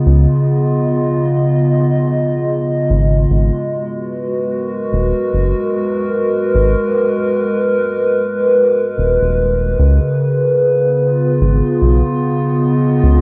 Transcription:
Already playing: C#3 B3 F4 D#5
0.06 C#2
2.90 G#1
3.30 G#1 G#3
3.70 F#4
3.96 B4
4.41 A#4
4.93 D#1
5.33 F#1
6.54 G#1
8.98 D#1
9.21 D#1
9.79 C#2 C#3
10.75 B3
11.02 F4
11.41 G#1
11.82 B1
12.54 D#5
13.03 C#2

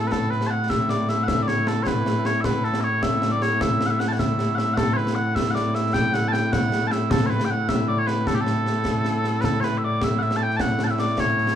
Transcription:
Already playing: A2 A3 E4
0.07 B4
0.12 A4, concert bass drum, snare
0.30 B4, snare
0.41 snare
0.47 F#5 A5
0.70 E5, concert bass drum, snare
0.89 D5, snare
1.09 E5, snare
1.24 F#5
1.28 E5, concert bass drum, snare
1.43 D5
1.48 C#5, snare
1.67 A4, snare
1.83 C#5, concert bass drum, snare
1.87 B4
2.06 snare
2.25 C#5, snare
2.41 B4 E5, concert bass drum, snare
2.64 A4, snare
2.74 snare
2.81 C#5 E5
3.03 E5, concert bass drum, snare
3.22 snare
3.32 D5
3.42 C#5, snare
3.61 E5, concert bass drum, snare
3.81 snare
3.86 F#5
3.91 E5
4.00 F#5, snare
4.08 A5
4.12 F#5
4.19 E5, concert bass drum, snare
4.39 snare
4.55 E5 F#5, snare
4.74 A4 F#5, concert bass drum, snare
4.93 B4 C#5
4.97 snare
5.07 snare
5.15 F#5
5.35 E5, concert bass drum, snare
5.51 F#5
5.55 D5, snare
5.75 E5, snare
5.93 G5, concert bass drum, snare
6.13 F#5, snare
6.28 A5
6.32 G5, snare
6.52 F#5, concert bass drum, snare
6.72 snare
6.87 A5
6.91 E5, snare
7.11 A4, concert bass drum, snare
7.26 B4 C#5
7.30 snare
7.40 snare
7.45 G5
7.50 F#5
7.69 E5, concert bass drum, snare
7.89 D5
7.98 C#5
8.07 B4, snare
8.27 A4, concert bass drum, snare
8.35 G4
8.41 A4
8.46 snare
8.66 snare
8.85 concert bass drum, snare
9.05 snare
9.24 snare
9.41 A4 B4, concert bass drum, snare
9.60 B4 C#5, snare
9.72 snare
9.78 E5
9.85 D5
10.02 E5, concert bass drum, snare
10.19 E5 F#5, snare
10.31 snare
10.36 A5
10.43 G5
10.50 snare
10.57 A5, concert bass drum, snare
10.61 F#5
10.79 snare
10.84 F#5 A5
10.89 E5, snare
10.98 D5, snare
11.08 snare
11.18 C#5, concert bass drum, snare
11.38 snare
11.47 snare

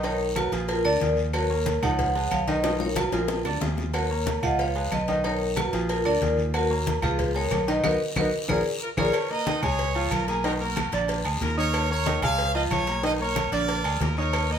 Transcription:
Already playing: B1
0.03 D#3 D#4 A#4 C#5 D#5, cowbell, low agogo, long guiro
0.20 high conga
0.36 F#3 F#4 A#4 B4, cowbell, high conga, low agogo, short guiro, claves
0.52 A#1 F3 F4 G#4, cowbell, high conga, low agogo, short guiro
0.68 F4 A#4, cowbell, high conga, low agogo, long guiro
0.85 D2 D3 D4 A#4 D5, high conga, low agogo, claves
1.00 D#2 F3 F4 G#4, cowbell, high conga, short guiro
1.17 high conga, short guiro
1.33 F#3 F#4 A#4 C#5 F#5, cowbell, high conga, low agogo, long guiro, claves
1.50 A#3 A#4 C#5, high conga
1.66 cowbell, high conga, low agogo, short guiro
1.82 C#2 F3 D#4 C#5 F#5, high conga, low conga, low agogo, short guiro, claves
1.99 cowbell, high conga, low conga, long guiro
2.15 G#3 G#4 B4, high conga, low agogo
2.31 B1 C#5 F5, cowbell, high conga, low agogo, short guiro, claves
2.48 D#3 D#4 B4 D#5, cowbell, high conga, short guiro
2.64 D#3 D#4 D#5, cowbell, high bongo, high conga, low agogo, long guiro
2.80 A#4 C#5, high bongo, high conga
2.96 F#3 F#4 A#4 B4, cowbell, high bongo, high conga, low agogo, short guiro, claves
3.12 A#1 F3 F4 G#4 A#4, cowbell, high bongo, high conga, low agogo, short guiro
3.28 cowbell, low bongo, high conga, low agogo, long guiro
3.45 D2 D3 D4 D5, low bongo, high conga, low agogo, claves
3.61 D#2 F3 F4 G#4, cowbell, low bongo, high conga, low timbale, short guiro
3.77 low bongo, high conga, short guiro
3.93 F#3 F#4 A#4 C#5 F#5, cowbell, high conga, low agogo, long guiro, claves
4.10 A#3 A#4 C#5, high conga
4.26 cowbell, high conga, low agogo, short guiro
4.42 C#2 F3 F4 D#5 F5 F#5, high conga, low conga, low agogo, short guiro, claves
4.59 C#5 F5, cowbell, high conga, long guiro
4.75 G#3 G#4 B4, high conga, low agogo
4.92 B1 B4 D#5, cowbell, high conga, low agogo, short guiro, claves
5.08 D#3 D#4 D#5, cowbell, high conga, short guiro
5.24 D#3 D#4 A#4 C#5 D#5, cowbell, high conga, low agogo, long guiro
5.41 high conga
5.56 F#3 F#4 A#4 B4, cowbell, high conga, low agogo, short guiro, claves
5.73 A#1 F3 F4 G#4, cowbell, high conga, low agogo, short guiro
5.89 F4 A#4, cowbell, high conga, low agogo, long guiro
6.05 D2 D3 D4 A#4 D5, high conga, low agogo, claves
6.22 D#2 F3 F4 G#4, cowbell, high conga, short guiro
6.38 high conga, short guiro
6.54 F#3 F#4 A#4 F#5, cowbell, high conga, low agogo, long guiro, claves
6.70 A#3 A#4 C#5, high conga
6.86 cowbell, high conga, low agogo, short guiro
7.02 C#2 F3 F4 G#4 B4 F5, high conga, low conga, low agogo, short guiro, claves
7.19 cowbell, high conga, low conga, long guiro
7.35 G#3 B3 G#4 A#4 C#5, high conga, low agogo
7.51 B1, cowbell, high conga, low timbale, low agogo, short guiro, claves
7.67 D#3 D#4 B4 D#5, cowbell, short guiro
7.83 B1 B3 D#4 F#4 A#4 B4 D#5, cowbell, high conga, high timbale, long guiro, claves
8.16 B1 B3 D#4 F#4 A#4 B4 D#5, cowbell, high conga, high timbale, long guiro, claves
8.48 A#1 F4 G#4 A#4 D5, cowbell, high conga, high timbale, long guiro, claves
8.82 F4 A#4
8.97 A#1 F4 G#4 A#4 C#5 D5, cowbell, high conga, high timbale, long guiro, claves
9.13 cowbell, low agogo, long guiro, claves
9.30 A#3 A#4 B4 D#5 A#5, high conga
9.46 D#3 D#4 D#5, cowbell, high conga, low agogo, short guiro
9.62 C#2 G#3 G#4 C#5 G#5, high conga, low conga, low agogo, short guiro, claves
9.79 cowbell, high conga, long guiro
9.95 F3 F4 F5, high conga, low agogo
10.11 B1 F4 A#4, cowbell, high conga, low agogo, short guiro, claves
10.28 A#3 F4 G#4 A#4 A#5, cowbell, short guiro
10.44 D#3 D#4 F#4 A#4 D#5, cowbell, high conga, low agogo, long guiro
10.61 A#3 F#4 A#4 A#5, high conga
10.76 cowbell, high conga, low agogo, short guiro, claves
10.92 A#1 D3 D4 D5, cowbell, high conga, low agogo, short guiro
11.08 cowbell, high conga, low agogo, long guiro
11.25 D2 G#3 G#4 G#5, high conga, low agogo, claves
11.41 D#2 F4 A#4, cowbell, high conga, short guiro
11.57 D#4 A#4 C#5 D#5 D#6, high conga, short guiro
11.74 cowbell, low agogo, long guiro, claves
11.90 A#3 A#4 C#5 A#5, high conga
12.06 D#3 D#4 D#5, cowbell, high conga, low agogo, short guiro
12.22 C#2 G#3 G#4 C#5 F5 G#5, high conga, low conga, low agogo, short guiro, claves
12.39 cowbell, high conga, long guiro
12.55 F3 F4 B4 D#5 F5, high conga, low agogo
12.71 B1 G#4 C#5, cowbell, high conga, low agogo, short guiro, claves
12.87 A#3 A#4 A#5, cowbell, short guiro
13.03 D#3 D#4 B4 D#5, cowbell, high conga, low agogo, long guiro
13.20 A#3 A#4 C#5 A#5, high conga
13.36 cowbell, high conga, low agogo, short guiro, claves
13.52 A#1 D3 D4 A#4 D5, cowbell, high conga, low agogo, short guiro
13.68 cowbell, high conga, low agogo, long guiro
13.84 D2 G#3 G#4 G#5, high conga, low agogo, claves
14.01 D#2 F4 A#4, cowbell, high conga, low timbale, short guiro
14.17 D#4 A#4 C#5 D#5 D#6, high conga, short guiro
14.33 cowbell, high conga, low agogo, long guiro, claves
14.50 A#3 A#4 B4 D#5 A#5, high conga

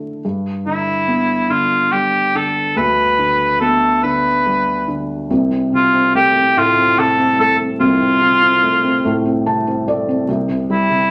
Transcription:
Already playing: A2 D3 A3
0.25 G2
0.66 D3 E4
1.08 B3
1.50 D3 F4
1.92 G3 G4
2.34 D3 A4
2.77 D2 B4
3.18 D3
3.61 B3 A4
4.03 D3 B4
4.46 G3
4.88 D3
5.30 C2 C3
5.51 C4
5.72 C3 F4
5.93 C4
6.15 A3 G4
6.36 C4
6.57 A2 A3 F4
6.78 C4
6.98 C3 A4
7.19 C4
7.39 A3 A4
7.60 C4
7.80 C2 C3 F4
8.01 C4
8.21 C3
8.43 C4
8.64 A3
8.84 C4
9.05 A2 A3
9.25 C4
9.46 C3 A5
9.67 C4
9.88 A3 D5
10.09 C4
10.29 C2 C3
10.49 C3
10.70 G3 E4
10.90 C3

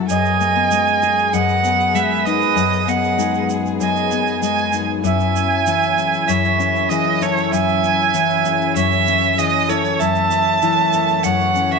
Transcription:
Already playing: F#2 F#3 A3
0.08 F#2 B3 G#4 D#5 G#5, shaker
0.25 shaker
0.41 A3, shaker
0.56 B3
0.70 G#3, shaker
0.87 shaker
1.02 G#4, shaker
1.18 shaker
1.33 F#2 D#5 F#5, shaker
1.49 shaker
1.64 B3, shaker
1.80 shaker
1.95 G#3 B4 E5, shaker
2.25 D#4 B4 D#5, shaker
2.42 shaker
2.56 F#2, shaker
2.73 shaker
2.87 B3 D#5 F#5, shaker
3.04 shaker
3.18 G#3 D#4, shaker
3.34 shaker
3.49 G#4, shaker
3.66 shaker
3.80 F#2 D#5 G#5, shaker
3.96 shaker
4.11 B3, shaker
4.27 shaker
4.42 G#3 D#5 G#5, shaker
4.58 shaker
4.73 D#4, shaker
5.03 F#2 C#4 E4 E5 G#5, shaker
5.20 shaker
5.35 C#4, shaker
5.66 E3 E4, shaker
5.82 shaker
5.97 G#4, shaker
6.14 shaker
6.28 F#2 C#5 E5, shaker
6.45 shaker
6.59 C#4, shaker
6.76 shaker
6.89 E3 G#4 D#5, shaker
7.21 E4 A4 C#5, shaker
7.37 shaker
7.52 F#2 E5 G#5, shaker
7.69 shaker
7.84 C#4, shaker
8.14 E3 E4, shaker
8.30 shaker
8.45 G#4, shaker
8.61 shaker
8.76 F#2 C#5 E5, shaker
8.92 shaker
9.07 C#4, shaker
9.23 shaker
9.37 E3 G#4 D#5, shaker
9.68 E4 A4 C#5, shaker
9.85 shaker
10.00 F#2 E3 A3 E5 A5, shaker
10.15 shaker
10.31 C#4, shaker
10.62 E3 E4, shaker
10.93 A4, shaker
11.08 shaker
11.23 F#2 C#5 F#5, shaker
11.40 shaker
11.55 C#4, shaker
11.71 C#5 E5, shaker

